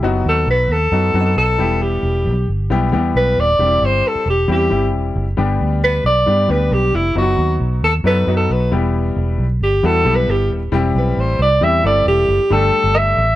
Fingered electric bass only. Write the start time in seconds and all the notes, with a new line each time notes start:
0.03 F#1
0.25 D#2
0.47 B1
0.68 D#2
0.92 F#2
1.14 F#2
1.36 B1
1.59 E1
2.03 E1
2.26 B1
2.48 G1
2.70 B1
2.92 E2
3.15 B1
3.37 D#1
3.59 E1
3.82 G1
4.15 muted fingered electric bass stroke
4.26 E1
4.48 E2
4.71 G1
4.93 E1
5.16 F#1
5.38 G1
5.61 D2
6.04 B1
6.27 G2
6.49 D2
6.71 B1
6.93 F1
7.15 F#1
7.37 D#2
7.60 B1
7.82 D#2
8.04 F#2
8.27 F#2
8.49 B1
8.72 E1
9.16 E1
9.38 B1
9.60 G1
9.83 E2
10.05 B1
10.28 G1
10.50 D#1
10.72 E1
10.95 B1
11.17 A1
11.39 C2
11.61 E2
11.84 G1
12.06 E1
12.28 F#1
12.51 G1
12.84 G1
13.17 A1